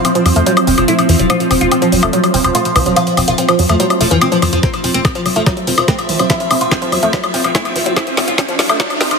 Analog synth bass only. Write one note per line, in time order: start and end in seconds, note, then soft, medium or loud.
0.26 0.32 F2 medium
0.36 0.43 F2 medium
0.67 0.74 F1 loud
0.78 0.85 F1 medium
1.09 1.16 F2 loud
1.19 1.26 F1 medium
1.51 1.57 F1 loud
1.61 1.68 F1 medium
1.92 1.99 F1 medium
2.03 2.10 F1 medium
2.34 2.41 F1 medium
2.44 2.51 F1 medium
2.76 2.82 C2 loud
2.86 2.93 F1 medium
3.17 3.24 F1 loud
3.28 3.35 F1 medium
3.59 3.66 F2 medium
3.69 3.76 F2 medium
4.01 4.07 F1 medium
4.11 4.18 F2 medium
4.42 4.49 F2 loud
4.53 4.60 F2 medium
4.84 4.91 F1 loud
4.94 5.01 F1 medium
5.26 5.32 F1 medium
5.36 5.43 F1 medium
5.67 5.74 F1 loud
5.78 5.85 F1 medium
6.09 6.16 C2 medium
6.19 6.26 F1 medium
6.51 6.57 F1 loud
6.61 6.68 F1 medium
6.92 6.99 F2 medium
7.03 7.10 F2 medium
7.34 7.41 F1 loud
7.44 7.51 F1 medium
7.76 7.82 F2 loud
7.86 7.93 F1 medium
8.17 8.24 F1 medium
8.28 8.35 F1 medium
8.59 8.66 F1 medium
8.69 8.76 F1 medium
9.01 9.07 F1 medium
9.11 9.18 F1 medium